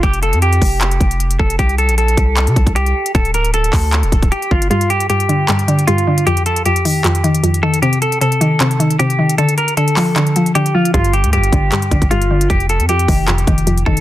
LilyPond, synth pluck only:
\new Staff \with { instrumentName = "Synth pluck" } { \clef bass \time 4/4 \key f \mixolydian \tempo 4 = 154 r1 | r1 | r1 | g,4 g,8 d8 g,8 d8 g,8 d8 |
f,4 f,8 ees8 f,8 ees8 f,8 ees8 | c4 c8 ees8 c8 ees8 c8 ees8 | d4 d8 f8 d8 f8 d8 f8 | g,4 g,8 d8 g,8 d8 g,8 d8 |
f,4 f,8 ees8 f,8 ees8 f,8 ees8 | }